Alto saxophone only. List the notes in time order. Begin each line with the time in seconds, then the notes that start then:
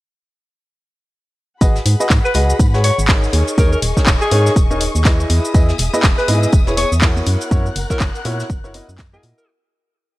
2.25 B4
2.84 C#5
3.58 A#4
3.72 A#4
4.21 G#4
6.18 B4
6.78 C#5
7.90 A#4
9.13 G#4
9.38 A#4